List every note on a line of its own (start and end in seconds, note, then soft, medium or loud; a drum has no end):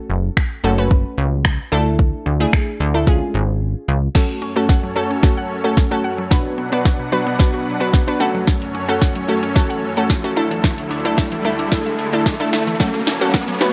0.00 0.42 A3 medium
0.00 0.42 C#4 medium
0.00 0.42 F#4 medium
0.00 0.43 A4 loud
0.10 0.30 F#1 medium
0.37 finger snap loud
0.37 kick loud
0.64 1.05 F#1 loud
0.64 0.72 A3 medium
0.64 0.72 C#4 medium
0.64 0.72 F#4 medium
0.64 0.72 A4 loud
0.78 1.40 A3 medium
0.78 1.40 C#4 medium
0.78 1.40 F#4 medium
0.78 1.40 B4 medium
0.91 kick loud
1.18 1.59 C#2 loud
1.45 finger snap loud
1.45 kick loud
1.72 2.13 D2 loud
1.72 2.26 A3 loud
1.72 2.26 D4 medium
1.72 2.26 E4 medium
1.72 2.26 A4 loud
1.99 kick loud
2.26 2.46 D2 medium
2.40 2.71 A3 medium
2.40 2.71 D4 medium
2.40 2.71 E4 medium
2.40 2.71 G#4 loud
2.53 finger snap loud
2.53 kick loud
2.80 3.21 D2 loud
2.94 3.07 A3 medium
2.94 3.07 D4 medium
2.94 3.07 E4 medium
2.94 3.07 A4 loud
3.07 3.94 G#3 medium
3.07 3.94 C#4 medium
3.07 3.94 F4 medium
3.07 3.94 G#4 loud
3.07 kick loud
3.34 3.75 G#1 loud
3.88 4.09 C#2 loud
4.15 6.29 F#2 medium
4.15 4.24 F#3 medium
4.15 10.33 F#3 medium
4.15 4.39 A3 medium
4.15 4.39 C#4 medium
4.15 6.29 C#4 medium
4.15 4.39 F#4 medium
4.15 6.29 A4 medium
4.15 4.39 A4 medium
4.15 6.29 C#5 medium
4.15 kick loud
4.15 snare medium
4.15 crash loud
4.15 riser medium
4.42 4.51 C#4 medium
4.56 4.79 A3 medium
4.56 4.80 C#4 medium
4.56 4.65 F#4 medium
4.56 4.80 F#4 medium
4.56 4.80 A4 medium
4.69 4.78 F#5 medium
4.69 kick loud
4.69 snare medium
4.83 4.92 F#3 medium
4.96 5.12 A3 medium
4.96 5.06 A3 medium
4.96 5.12 C#4 medium
4.96 5.12 F#4 medium
4.96 5.13 A4 medium
5.11 5.19 C#4 medium
5.23 5.47 A3 medium
5.23 5.47 C#4 medium
5.23 5.33 F#4 loud
5.23 5.47 F#4 medium
5.23 5.47 A4 medium
5.23 kick loud
5.23 snare medium
5.37 5.46 F#5 medium
5.64 5.79 A3 medium
5.64 5.79 C#4 medium
5.64 5.79 F#4 medium
5.64 5.79 A4 medium
5.77 5.87 C#4 medium
5.77 kick loud
5.77 snare medium
5.91 6.15 A3 medium
5.91 6.15 C#4 medium
5.91 6.15 F#4 medium
5.91 6.00 F#4 medium
5.91 6.15 A4 loud
6.04 6.14 F#5 medium
6.18 6.27 F#3 medium
6.31 6.40 B2 medium
6.31 8.19 B2 medium
6.31 6.55 B3 medium
6.31 6.55 D4 medium
6.31 8.19 D4 medium
6.31 6.55 F#4 medium
6.31 6.55 B4 medium
6.31 8.19 B4 medium
6.31 8.19 F#5 medium
6.31 kick loud
6.31 snare medium
6.58 6.67 B3 medium
6.72 6.96 B3 medium
6.72 6.96 D4 medium
6.72 6.81 D4 medium
6.72 6.96 F#4 medium
6.72 6.96 B4 medium
6.85 6.95 F#4 loud
6.85 kick loud
6.85 snare medium
6.99 7.08 B2 medium
7.12 7.22 F#3 medium
7.12 7.29 B3 medium
7.12 7.29 D4 medium
7.12 7.29 F#4 medium
7.12 7.29 B4 loud
7.27 7.35 B3 medium
7.39 7.63 B3 medium
7.39 7.63 D4 medium
7.39 7.49 D4 medium
7.39 7.63 F#4 medium
7.39 7.63 B4 loud
7.39 kick loud
7.39 snare medium
7.54 7.62 F#4 medium
7.80 7.95 B3 medium
7.80 7.96 D4 medium
7.80 7.96 F#4 medium
7.80 7.96 B4 medium
7.93 8.03 B3 medium
7.93 kick loud
7.93 snare medium
8.07 8.20 B3 medium
8.07 8.20 D4 medium
8.07 8.16 D4 medium
8.07 8.19 F#4 medium
8.07 8.21 B4 loud
8.20 10.35 F#2 medium
8.20 8.74 A3 loud
8.20 8.74 C#4 medium
8.20 10.35 C#4 medium
8.20 8.74 F#4 medium
8.20 8.75 A4 loud
8.20 13.73 A4 medium
8.20 10.35 C#5 medium
8.20 8.30 F#5 medium
8.35 8.43 F#3 medium
8.47 8.57 F#3 medium
8.47 kick loud
8.47 snare medium
8.62 closed hi-hat medium
8.75 8.84 C#4 medium
8.88 9.12 A3 medium
8.88 9.12 C#4 medium
8.88 9.12 F#4 medium
8.88 8.97 F#4 medium
8.88 9.12 A4 loud
8.88 closed hi-hat medium
9.02 9.11 F#5 medium
9.02 kick loud
9.02 snare medium
9.16 9.24 F#3 medium
9.16 closed hi-hat medium
9.28 9.45 A3 medium
9.28 9.38 A3 medium
9.28 9.45 C#4 medium
9.28 9.45 F#4 medium
9.28 9.45 A4 medium
9.43 9.51 C#4 medium
9.43 closed hi-hat medium
9.55 9.79 A3 medium
9.55 9.79 C#4 medium
9.55 9.65 F#4 loud
9.55 9.79 F#4 medium
9.55 9.79 A4 medium
9.55 kick loud
9.55 snare medium
9.70 9.78 F#5 medium
9.70 closed hi-hat soft
9.97 10.12 A3 medium
9.97 10.12 C#4 medium
9.97 10.12 F#4 medium
9.97 10.12 A4 medium
9.97 closed hi-hat medium
10.10 10.19 C#4 medium
10.10 kick loud
10.10 snare medium
10.24 10.35 A3 medium
10.24 10.37 C#4 medium
10.24 10.32 F#4 medium
10.24 10.37 F#4 medium
10.24 10.36 A4 loud
10.24 closed hi-hat medium
10.36 12.77 D2 medium
10.36 12.78 D3 medium
10.36 10.91 A3 medium
10.36 12.78 A3 medium
10.36 10.91 D4 medium
10.36 12.77 E4 medium
10.36 10.91 E4 medium
10.36 10.91 A4 loud
10.36 10.46 E5 medium
10.51 10.59 E3 medium
10.51 closed hi-hat medium
10.64 10.73 E3 medium
10.64 kick loud
10.64 snare medium
10.78 closed hi-hat medium
10.91 11.00 D4 medium
10.91 open hi-hat medium
11.05 11.28 A3 medium
11.05 11.28 D4 medium
11.05 11.13 E4 medium
11.05 11.28 E4 medium
11.05 11.29 A4 loud
11.05 closed hi-hat medium
11.18 11.27 E5 medium
11.18 kick loud
11.18 snare medium
11.32 11.40 E3 medium
11.32 closed hi-hat medium
11.45 11.61 A3 medium
11.45 11.54 A3 medium
11.45 11.61 D4 medium
11.45 11.61 E4 medium
11.45 11.61 A4 loud
11.45 open hi-hat medium
11.59 11.67 D4 medium
11.59 closed hi-hat medium
11.72 11.95 A3 medium
11.72 11.96 D4 medium
11.72 11.81 E4 medium
11.72 11.96 E4 medium
11.72 11.96 A4 medium
11.72 kick loud
11.72 snare medium
11.86 11.94 E5 medium
11.86 closed hi-hat soft
11.99 open hi-hat medium
12.13 12.28 A3 medium
12.13 12.28 D4 medium
12.13 12.28 E4 medium
12.13 12.28 A4 medium
12.13 closed hi-hat medium
12.26 12.35 D4 medium
12.26 kick loud
12.26 snare medium
12.40 12.63 A3 medium
12.40 12.63 D4 medium
12.40 12.48 E4 medium
12.40 12.63 E4 medium
12.40 12.64 A4 loud
12.40 closed hi-hat medium
12.53 12.62 E5 medium
12.53 snare medium
12.53 open hi-hat medium
12.67 12.75 E3 medium
12.67 closed hi-hat medium
12.80 13.73 F#2 medium
12.80 12.89 F#3 medium
12.80 13.73 F#3 medium
12.80 13.04 A3 medium
12.80 13.04 C#4 medium
12.80 13.73 C#4 medium
12.80 13.04 F#4 medium
12.80 13.04 A4 medium
12.80 13.73 C#5 medium
12.80 kick loud
12.80 snare medium
12.80 shaker medium
12.94 closed hi-hat medium
12.94 shaker medium
13.07 13.16 C#4 medium
13.07 snare medium
13.07 open hi-hat medium
13.07 shaker soft
13.21 13.44 A3 medium
13.21 13.45 C#4 medium
13.21 13.30 F#4 medium
13.21 13.45 F#4 medium
13.21 13.45 A4 loud
13.21 closed hi-hat medium
13.21 shaker medium
13.34 13.43 F#5 loud
13.34 kick loud
13.34 snare medium
13.34 shaker medium
13.48 13.57 F#3 medium
13.48 closed hi-hat medium
13.48 shaker medium
13.61 13.73 A3 medium
13.61 13.71 A3 medium
13.61 13.73 C#4 medium
13.61 13.73 F#4 medium
13.61 13.73 B4 medium
13.61 snare medium
13.61 open hi-hat medium